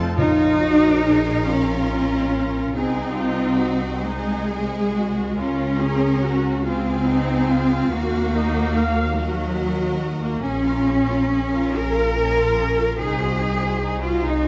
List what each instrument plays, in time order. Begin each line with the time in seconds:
Already playing: viola section C4 F4, violin section A4 A5, oboe A4
0.16 double bass section A#1, timpani A#2, cello section D#4, viola section F4, violin section A#4 C#5
0.61 viola section F#4
1.05 viola section G#4
1.44 cello section C#4, viola section F4, violin section F5
1.86 violin section D#5
2.30 violin section C#5
2.72 double bass section C2, cello section C4, viola section D#4, violin section G#4 D#5
3.16 violin section F4
3.56 violin section F#4
4.00 cello section G#3, viola section D#4, violin section G#4
4.47 viola section G#4
4.92 viola section F#4
5.37 double bass section C#2, cello section C#4, viola section F4, violin section A#4 C#5
5.81 viola section G#4
6.22 viola section F#4
6.65 cello section C4, viola section F4, violin section G#4 F5
7.07 viola section D#4
7.50 viola section F4
7.92 double bass section D#2, cello section A#3, violin section F#4, viola section F#4
8.34 viola section D#4
8.75 viola section F5
9.15 cello section F#3, viola section F#4, violin section A#4 D#5
10.21 cello section A#3
10.42 double bass section A#1, viola section C#4, cello section C#4, violin section G#4 G#5
10.65 viola section F4, violin section A#4 F5
10.85 viola section C#4, violin section G#4 G#5
11.08 viola section F4, violin section A#4 F5
11.29 viola section C#4, violin section G#4 G#5
11.52 viola section F4, violin section A#4 F5
11.73 double bass section A#1, viola section C#4, violin section G#4 G#5, cello section A#4
11.94 viola section F4, violin section A#4 F5
12.15 viola section C#4, violin section G#4 G#5
12.36 viola section F4, violin section A#4 F5
12.57 viola section C#4, violin section G#4 G#5
12.76 viola section F4, violin section A#4 F5
12.96 double bass section C2, viola section D#4, cello section G#4, violin section G#4 C5
13.18 viola section F#4, violin section C5 D#5
13.39 viola section D#4, violin section G#4 C5
13.59 viola section F#4, violin section C5 D#5
13.81 viola section D#4, violin section G#4 C5
14.01 cello section F4, viola section F#4, violin section C5 D#5
14.20 double bass section C2, cello section D#4, viola section D#4, violin section G#4 C5
14.42 viola section F#4, violin section C5 D#5